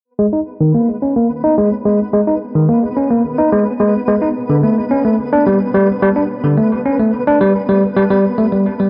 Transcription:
0.05 synth texture B3 B4
0.19 tine electric piano G#3
0.33 tine electric piano D#4
0.61 tine electric piano D#3
0.74 tine electric piano A#3
1.02 tine electric piano C#4
1.16 tine electric piano A#3
1.44 tine electric piano D#4
1.58 tine electric piano G#3
1.86 tine electric piano G#3
2.13 tine electric piano G#3
2.27 tine electric piano D#4
2.55 tine electric piano D#3
2.69 tine electric piano A#3
2.97 tine electric piano C#4
3.11 tine electric piano A#3
3.38 tine electric piano D#4
3.52 tine electric piano G#3
3.80 tine electric piano G#3
4.08 tine electric piano G#3
4.22 tine electric piano D#4
4.50 tine electric piano D3
4.63 tine electric piano A3
4.91 tine electric piano C#4
5.05 tine electric piano A3
5.33 tine electric piano D4
5.47 tine electric piano G3
5.74 tine electric piano G3
6.02 tine electric piano G3
6.16 tine electric piano D4
6.44 tine electric piano D3
6.58 tine electric piano A3
6.86 tine electric piano C#4
6.99 tine electric piano A3
7.27 tine electric piano D4
7.41 tine electric piano G3
7.69 tine electric piano G3
7.97 tine electric piano G3
8.11 tine electric piano G3
8.38 tine electric piano A3
8.52 tine electric piano G3
8.80 tine electric piano G3

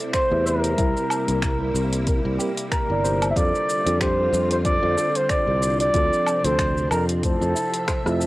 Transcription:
Already playing: string machine C3 G3 C4 E4
0.00 shaker
0.13 synth pluck C5, muted trumpet C5, finger snap, kick, closed hi-hat, shaker
0.30 fretless electric bass E2, tine electric piano A3 E4 G4 E5
0.46 muted trumpet A#4, synth pluck E5, shaker
0.64 closed hi-hat, shaker
0.77 fretless electric bass C2, tine electric piano G3 C4 E4 A#4, string machine A#3 E4, synth pluck E4, kick, closed hi-hat, shaker
0.97 shaker
1.10 low woodblock, shaker
1.27 fretless electric bass C2, tine electric piano G3 C4 E4 A#4, closed hi-hat, shaker
1.42 finger snap, kick, closed hi-hat, shaker
1.59 tine electric piano G3 C4 E4 A#4
1.74 fretless electric bass C2, shaker
1.93 closed hi-hat, shaker
2.05 tine electric piano G3 C4 E4 A#4, kick, closed hi-hat, shaker
2.25 fretless electric bass C2
2.37 tine electric piano G3 C4 E4 A#4, synth pluck G4, shaker
2.57 closed hi-hat, shaker
2.72 synth pluck A#4, muted trumpet A#4, finger snap, kick, closed hi-hat, shaker
2.88 fretless electric bass G1, tine electric piano G3 C4 E4 D5
3.04 synth pluck C5, shaker
3.22 closed hi-hat, low woodblock, shaker
3.31 muted trumpet E5
3.35 fretless electric bass F2, string machine D3 C4 F4, tine electric piano G3 D4 F4 A4, synth pluck F4, muted trumpet D5, kick, closed hi-hat, shaker
3.55 shaker
3.69 shaker
3.85 fretless electric bass F2, tine electric piano G3 D4 F4 A4, closed hi-hat, shaker
4.00 synth pluck G4, muted trumpet C5, finger snap, kick, closed hi-hat, shaker
4.17 tine electric piano G3 D4 F4 A4
4.33 fretless electric bass F2, shaker
4.51 muted trumpet C5, closed hi-hat, shaker
4.64 tine electric piano G3 D4 F4 A4, muted trumpet D5, kick, closed hi-hat, shaker
4.83 fretless electric bass F2
4.96 tine electric piano G3 D4 F4 A4, synth pluck A4, shaker
5.15 muted trumpet C5, closed hi-hat, shaker
5.29 synth pluck C5, muted trumpet D5, finger snap, kick, closed hi-hat, shaker
5.46 fretless electric bass C2, tine electric piano G3 D4 F4 D5
5.62 synth pluck D5, shaker
5.80 muted trumpet D5, closed hi-hat, shaker
5.93 fretless electric bass D2, string machine C3 F3 D4, tine electric piano F3 C4 D4 A4, synth pluck F4, kick, closed hi-hat, shaker
6.13 shaker
6.27 low woodblock, shaker
6.43 fretless electric bass D2, tine electric piano F3 C4 D4, muted trumpet C5, closed hi-hat, shaker
6.47 tine electric piano A4
6.59 finger snap, kick, closed hi-hat, shaker
6.76 tine electric piano F3 C4 D4 A4, shaker
6.91 fretless electric bass F2, muted trumpet A#4, low woodblock, shaker
7.09 closed hi-hat, shaker
7.22 string machine C3 F3 E5, tine electric piano A3 E4 F4 C5, muted trumpet A4, kick, closed hi-hat, shaker
7.41 fretless electric bass F2, shaker
7.55 synth pluck E4, shaker
7.74 closed hi-hat, shaker
7.88 synth pluck C5, finger snap, kick, cross-stick, closed hi-hat, shaker
8.04 fretless electric bass F2, tine electric piano A3 E4 F4 E5, cross-stick, shaker
8.20 synth pluck A4, shaker

